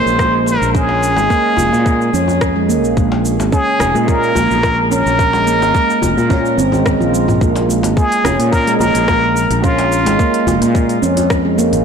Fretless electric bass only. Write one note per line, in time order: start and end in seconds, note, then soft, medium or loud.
0.06 0.56 A#1 medium
0.62 1.17 A#1 medium
1.17 1.27 G#1 medium
1.58 1.69 F1 medium
1.73 2.09 A#2 medium
2.14 2.84 F2 medium
2.84 2.94 A#1 medium
2.97 3.39 A#1 loud
3.39 3.50 G#1 medium
3.80 3.92 F1 medium
3.95 4.31 A#2 medium
4.36 4.47 A#1 medium
4.51 5.01 A#1 medium
5.06 5.61 A#1 loud
5.61 5.72 G#1 medium
6.02 6.14 F1 medium
6.17 6.59 A#2 medium
6.58 6.95 G#1 loud
7.00 7.37 A#1 medium
7.41 7.84 A#1 medium
7.84 7.94 G#1 medium
8.25 8.36 F1 medium
8.39 8.76 A#2 medium
8.80 8.92 A#1 medium
8.95 9.45 A#1 medium
9.50 10.06 A#1 loud
10.06 10.16 G#1 medium
10.47 10.58 F1 medium
10.61 10.98 A#2 medium
11.03 11.74 F2 medium
11.73 11.83 A#1 medium